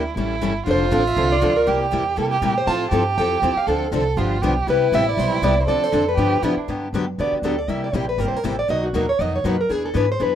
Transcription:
Already playing: upright bass D2, violin E4
0.16 upright bass A1, steel-string acoustic guitar E3 G3 C#4 E4 A4, violin E4
0.42 upright bass G1, steel-string acoustic guitar E3 G3 C#4 E4 A4
0.66 upright bass F1, steel-string acoustic guitar D3 F3 C4 D4 A4, violin F4
0.71 steel-string acoustic guitar C5
0.92 upright bass A1, steel-string acoustic guitar D3 F3 C4 D4 A4 F5
1.07 steel-string acoustic guitar E5
1.16 upright bass C2, steel-string acoustic guitar D3 F3 C4 D4 A4
1.32 steel-string acoustic guitar D5
1.42 upright bass D2, steel-string acoustic guitar D3 F3 C4 D4 A4
1.56 steel-string acoustic guitar A#4
1.66 upright bass C2, steel-string acoustic guitar C3 G3 A#3 E4 G4, violin G4
1.91 upright bass E2, steel-string acoustic guitar C3 G3 A#3 E4 G4
2.16 steel-string acoustic guitar C3 G3 A#3 E4 G4, upright bass C3, violin A4
2.31 violin G4
2.42 upright bass A#2, steel-string acoustic guitar C3 G3 A#3 E4 G4
2.58 steel-string acoustic guitar C5
2.67 upright bass A2, steel-string acoustic guitar F3 C4 E4 A4 A5, violin F4
2.91 upright bass G2, steel-string acoustic guitar F3 C4 E4 A4, violin G4
3.18 upright bass F2, steel-string acoustic guitar F3 C4 E4 A4 G5
3.42 upright bass E2, steel-string acoustic guitar F3 C4 E4 A4
3.56 steel-string acoustic guitar F5, muted upright bass stroke
3.67 upright bass D2, steel-string acoustic guitar D3 F3 C4 D4 A4, violin A4
3.91 upright bass C2, steel-string acoustic guitar D3 F3 C4 D4 A4, violin A4
4.17 upright bass G1, steel-string acoustic guitar D3 F3 B3 D4 G4, violin F4
4.42 upright bass B1, steel-string acoustic guitar D3 F3 B3 D4 G4, violin G4
4.67 upright bass C2, steel-string acoustic guitar C3 G3 B3 E4 G4 B4, violin E4
4.92 upright bass A1, steel-string acoustic guitar C3 G3 B3 E4 G4 E5
5.09 steel-string acoustic guitar D5
5.17 upright bass B1, steel-string acoustic guitar C3 G3 B3 E4 G4 C5
5.42 upright bass C2, steel-string acoustic guitar C3 G3 B3 E4 G4 D5
5.61 steel-string acoustic guitar C5
5.67 upright bass D2, steel-string acoustic guitar D3 F3 C4 D4 A4 D5, violin A4
5.84 steel-string acoustic guitar C5
5.92 upright bass F2, steel-string acoustic guitar D3 F3 C4 D4 A4
6.09 steel-string acoustic guitar B4
6.17 upright bass G2, steel-string acoustic guitar D3 F3 B3 D4 G4, violin G4
6.42 upright bass A2, steel-string acoustic guitar D3 F3 B3 D4 G4, violin E4
6.56 violin D4, muted upright bass stroke
6.68 upright bass G2, steel-string acoustic guitar D3 F#3 B3 D4 G4
6.93 upright bass F#2, steel-string acoustic guitar D3 F#3 B3 D4 G4
7.18 upright bass E2, steel-string acoustic guitar D3 F#3 B3 D4 G4 D5
7.32 steel-string acoustic guitar F#4, muted upright bass stroke
7.42 upright bass D2, steel-string acoustic guitar D3 F#3 B3 D4 G4 A4
7.59 steel-string acoustic guitar D5
7.68 upright bass C2, steel-string acoustic guitar C3 G3 A#3 E4 G4 E5
7.84 steel-string acoustic guitar D5
7.93 upright bass A#1, steel-string acoustic guitar C3 G3 A#3 E4 G4 C5
8.09 steel-string acoustic guitar B4
8.18 upright bass G1, steel-string acoustic guitar C3 G3 A#3 E4 G4 A#4
8.28 steel-string acoustic guitar C5
8.33 steel-string acoustic guitar A#4, muted upright bass stroke
8.44 upright bass A1, steel-string acoustic guitar C3 G3 A#3 E4 G4 A4
8.59 steel-string acoustic guitar D5
8.68 upright bass B1, steel-string acoustic guitar B2 D#3 F#3 A#3 B3 D#4 F#4 A#4 D#5
8.84 steel-string acoustic guitar F#4
8.93 upright bass D#2, steel-string acoustic guitar B2 D#3 F#3 A#3 B3 D#4 F#4 A#4
9.09 steel-string acoustic guitar C#5
9.19 upright bass F2, steel-string acoustic guitar B2 D#3 F#3 A#3 B3 D#4 F#4 A#4 D#5
9.36 steel-string acoustic guitar C#5
9.44 upright bass F#2, steel-string acoustic guitar B2 D#3 F#3 A#3 B3 D#4 F#4 A#4 B4
9.61 steel-string acoustic guitar A#4
9.69 upright bass E2, steel-string acoustic guitar E3 B3 D4 G#4 B4
9.85 steel-string acoustic guitar A4
9.95 upright bass G#2, steel-string acoustic guitar E3 B3 D4 G#4 B4
10.12 steel-string acoustic guitar C5
10.20 upright bass F#2, steel-string acoustic guitar E3 B3 D4 G#4 B4

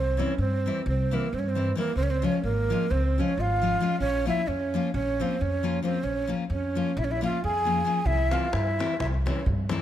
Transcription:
Already playing: upright bass C2, clarinet C4, ney C5
0.17 nylon-string guitar E3 G3 C4 E4, ney C#5
0.22 clarinet C#4
0.38 upright bass G2, clarinet C4, ney C5
0.66 nylon-string guitar E3 G3 C4 E4
0.86 upright bass C2, clarinet C4, ney C5
1.11 nylon-string guitar E3 G3 C4 E4, clarinet A#3, ney A#4
1.33 upright bass G2, clarinet C4, ney C5
1.39 clarinet C#4, ney C#5
1.48 clarinet C4, ney C5
1.55 nylon-string guitar E3 G3 C4 E4
1.75 nylon-string guitar E3 G3 C4 E4, clarinet A#3, ney A#4
1.96 upright bass C#2, clarinet C4, ney C5
2.02 clarinet C#4, ney C#5
2.10 clarinet C4, ney C5
2.22 nylon-string guitar F3 G#3 C#4 F4, clarinet C#4, ney C#5
2.43 upright bass G#1, clarinet A#3, ney A#4
2.70 nylon-string guitar F3 G#3 C#4 F4
2.91 upright bass C#2, clarinet C4, ney C5
3.18 nylon-string guitar F3 G#3 C#4 F4, clarinet C#4, ney C#5
3.38 upright bass G#1, clarinet F4, ney F5
3.62 nylon-string guitar F3 G#3 C#4 F4
3.81 nylon-string guitar F3 G#3 C#4 F4
4.00 upright bass A#1, clarinet C#4, ney C#5
4.25 nylon-string guitar F3 A#3 C#4 F4, clarinet E4, ney E5
4.47 upright bass F2, clarinet C#4, ney C#5
4.74 nylon-string guitar F3 A#3 C#4 F4
4.94 upright bass A#1, clarinet C#4, ney C#5
5.20 nylon-string guitar F3 A#3 C#4 F4, clarinet C4, ney C5
5.41 upright bass F2, clarinet C#4, ney C#5
5.63 nylon-string guitar F3 A#3 C#4 F4
5.83 nylon-string guitar F3 A#3 C#4 F4, clarinet C4, ney C5
6.03 upright bass A#1, clarinet C#4, ney C#5
6.27 nylon-string guitar F3 A#3 C#4 F4
6.50 upright bass F2, clarinet C#4, ney C#5
6.75 nylon-string guitar F3 A#3 C#4 F4
6.97 upright bass A#1, clarinet E4, ney E5
7.02 clarinet C#4, ney C#5
7.11 clarinet E4, ney E5
7.21 nylon-string guitar F3 A#3 C#4 F4, ney F5
7.27 clarinet F4
7.44 upright bass F2, clarinet G#4, ney G#5
7.65 nylon-string guitar F3 A#3 C#4 F4
7.85 nylon-string guitar F3 A#3 C#4 F4
8.05 upright bass C2, clarinet E4, ney E5, davul low
8.19 davul high
8.31 nylon-string guitar E3 G3 C4 E4, clarinet F4, ney F5, davul high
8.43 davul high
8.53 upright bass G2, clarinet E4, ney E5, davul high
8.67 davul high
8.79 nylon-string guitar E3 G3 C4 E4, davul high
8.98 upright bass C2, clarinet E4, ney E5, davul high, davul low
9.14 davul high
9.26 nylon-string guitar E3 G3 C4 E4, clarinet C#4, ney C#5, davul high
9.46 upright bass G2, davul low
9.69 nylon-string guitar E3 G3 C4 E4, davul high

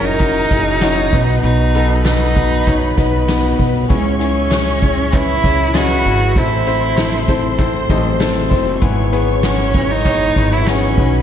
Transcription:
Already playing: upright bass F#1, upright piano C#3 C#4 E4 F#4 G#4 A#4, tonewheel organ E3 F#3 C#4 A#4, violin section A#4 A#5
0.04 cello D#4
0.19 upright piano C#4 E4 F#4 A#4, kick, clap, closed hi-hat
0.50 upright bass F#1, upright piano C#4 E4 F#4 G#4, kick, snare, closed hi-hat
0.81 upright piano C#4 E4 F#4 C#5, snare, clap, closed hi-hat
1.12 upright bass B1, upright piano B2 F#3 B3 D#4 F#4 B4, tonewheel organ B3 D#4, violin section B4 B5, kick, open hi-hat
1.43 upright bass B1, cello D#4, closed hi-hat
1.75 upright piano B3 D#4 F#4 A4, closed hi-hat
2.05 upright piano B3 D#4 F#4 A4, cello D#4, snare, clap, closed hi-hat
2.36 upright piano B3 D#4 F#4 B4, kick, closed hi-hat
2.67 upright piano B3 D#4 F#4 C#5, kick, clap, closed hi-hat
2.97 upright bass B1, upright piano B3 D#4 F#4 B4, kick, snare, closed hi-hat
3.28 upright piano B3 D#4 F#4 B4, snare, clap, closed hi-hat
3.59 upright bass B1, upright piano B3 D#4 F#4 B4, kick, open hi-hat
3.89 upright bass C#2, upright piano C#3 G#3 C#4 E4 G#4 C#5, tonewheel organ C#3 C#4 E4 G#4, violin section C#5 C#6, kick, closed hi-hat
3.93 cello C#4
4.20 upright piano C#4 E4 G#4 C#5, closed hi-hat
4.24 cello C#4
4.50 upright piano C#4 E4 G#4 C#5, snare, clap, closed hi-hat
4.82 upright piano C#4 E4 G#4 C#5, kick, closed hi-hat
5.12 upright piano C#4 E4 G#4 B4, cello E4, kick, clap, closed hi-hat
5.44 upright bass C#2, upright piano C#4 E4 G#4 C#5, violin section B4 B5, kick, snare, closed hi-hat
5.74 upright piano C#4 E4 G#4 D#5, cello F#4, snare, clap, closed hi-hat
6.05 upright bass G#1, upright piano C#4 E4 G#4 C#5, open hi-hat
6.36 upright bass A1, upright piano A2 E3 C4 E4 A4 C5, tonewheel organ E3 A3 C4, cello E4, violin section C5 C6, kick, closed hi-hat
6.67 upright piano C4 E4 A4 C5, closed hi-hat
6.97 upright piano C4 E4 A4 C5, snare, clap, closed hi-hat
7.28 upright piano C4 E4 A4 C5, kick, closed hi-hat
7.58 upright piano C4 E4 A4 C5, kick, clap, closed hi-hat
7.89 upright bass A1, upright piano C4 E4 A4 D#5, kick, snare, closed hi-hat
8.20 upright piano C4 E4 A4 C5, snare, clap, closed hi-hat
8.50 upright bass F#1, upright piano C4 E4 A4 C5, kick, open hi-hat
8.82 upright bass G#1, upright piano G#2 G#3 B3 E4 G#4 B4, tonewheel organ G#3 B3, violin section C#5 C#6, kick, closed hi-hat
9.12 upright piano B3 E4 G#4 B4, closed hi-hat
9.43 upright piano B3 E4 G#4 B4, cello C#4, snare, clap, closed hi-hat
9.74 upright piano B3 E4 G#4 B4, kick, closed hi-hat
9.91 cello D#4
10.05 upright piano B3 E4 G#4 C#5, kick, clap, closed hi-hat
10.36 upright bass G#1, upright piano B3 E4 G#4 B4, kick, snare, closed hi-hat
10.52 cello E4
10.67 upright piano B3 E4 G#4 C#5, cello C#4, snare, clap, closed hi-hat
10.97 upright bass B1, upright piano B2 F#3 C#4 D#4 F#4 B4, tonewheel organ D#3 B3 C#4, violin section B4 B5, kick, open hi-hat

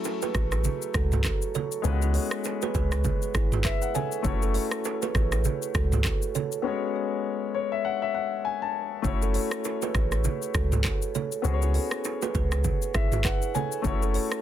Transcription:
Already playing: grand piano F#3 A3 C#4 E4 A4
0.04 high bongo, shaker
0.22 kalimba G#4 B4, low bongo, shaker
0.35 sub bass A1, kalimba G#4 B4, kick, cross-stick, low bongo, shaker
0.52 cross-stick, high bongo, shaker
0.64 low conga, shaker
0.82 shaker
0.94 sub bass C#2, kalimba F#4 A4, kick, cross-stick, shaker
1.12 mid tom, low bongo, shaker
1.24 kick, cross-stick, clap, high bongo, shaker
1.42 shaker
1.55 kalimba A4 C#5, low conga, shaker
1.72 shaker
1.82 sub bass C#2, grand piano G#3 B3 C#4 F4, low conga, shaker
1.87 grand piano B4
1.92 grand piano F#4
2.02 kalimba E4 G#4, shaker
2.14 kalimba A4 C#5, open hi-hat
2.31 cross-stick, shaker
2.44 high bongo, shaker
2.62 kalimba G#4 B4, low bongo, shaker
2.75 sub bass C#2, kalimba G#4 B4, kick, low bongo, shaker
2.92 cross-stick, high bongo, shaker
3.04 kick, low conga, shaker
3.22 shaker
3.35 sub bass G#1, kalimba E4 G#4, kick, cross-stick, shaker
3.52 mid tom, low bongo, shaker
3.64 kalimba G#4 B4, grand piano E5, kick, cross-stick, clap, high bongo, shaker
3.82 grand piano F#5, shaker
3.95 kalimba A4 C#5, grand piano G#5, low conga, shaker
4.12 shaker
4.22 sub bass F#1, grand piano A3 C#4 E4 F#4, kick, low conga, shaker
4.27 grand piano C#5
4.42 kalimba F#4 A4, shaker
4.54 kalimba A4 C#5, open hi-hat
4.71 cross-stick, shaker
4.85 high bongo, shaker
5.02 kalimba G#4 B4, low bongo, shaker
5.15 sub bass A1, kalimba G#4 B4, kick, cross-stick, low bongo, shaker
5.32 cross-stick, high bongo, shaker
5.45 low conga, shaker
5.62 shaker
5.75 sub bass C#2, kalimba F#4 A4, kick, cross-stick, shaker
5.92 mid tom, low bongo, shaker
6.05 kick, cross-stick, clap, high bongo, shaker
6.22 shaker
6.35 kalimba A4 C#5, low conga, shaker
6.52 shaker
6.62 grand piano G#3 B3 C#4 F#4
6.67 grand piano C#5
7.55 grand piano C#5
7.72 grand piano E5
7.85 grand piano F#5
8.02 grand piano E5
8.14 grand piano F#5
8.45 grand piano G#5
8.62 grand piano A5
9.02 sub bass F#1, grand piano A3 C#4 E4 F#4, kick, low conga, shaker
9.07 grand piano C#5
9.22 kalimba F#4 A4, shaker
9.34 kalimba A4 C#5, open hi-hat
9.51 cross-stick, shaker
9.64 high bongo, shaker
9.82 kalimba G#4 B4, low bongo, shaker
9.95 sub bass A1, kalimba G#4 B4, kick, cross-stick, low bongo, shaker
10.12 cross-stick, high bongo, shaker
10.24 low conga, shaker
10.42 shaker
10.54 sub bass C#2, kalimba F#4 A4, kick, cross-stick, shaker
10.72 mid tom, low bongo, shaker
10.84 kick, cross-stick, clap, high bongo, shaker
11.02 shaker
11.15 kalimba A4 C#5, low conga, shaker
11.32 shaker
11.42 sub bass C#2, grand piano B3 C#4 F#4 G#4, low conga, shaker
11.47 grand piano C5
11.54 grand piano C#5
11.62 kalimba E4 G#4, shaker
11.74 kalimba A4 C#5, open hi-hat
11.91 cross-stick, shaker
12.04 high bongo, shaker
12.22 kalimba G#4 B4, low bongo, shaker
12.35 sub bass C#2, kalimba G#4 B4, kick, low bongo, shaker
12.52 cross-stick, high bongo, shaker
12.64 kick, low conga, shaker
12.82 shaker
12.94 sub bass G#1, kalimba E4 G#4, grand piano E5, kick, cross-stick, shaker
13.12 mid tom, low bongo, shaker
13.24 kalimba G#4 B4, grand piano F#5, kick, cross-stick, clap, high bongo, shaker
13.42 shaker
13.55 kalimba A4 C#5, grand piano G#5, low conga, shaker
13.72 shaker
13.82 sub bass F#1, grand piano A3 C#4 E4 F#4, kick, low conga, shaker
13.87 grand piano C#5
14.02 kalimba F#4 A4, shaker
14.14 kalimba A4 C#5, open hi-hat
14.32 cross-stick, shaker

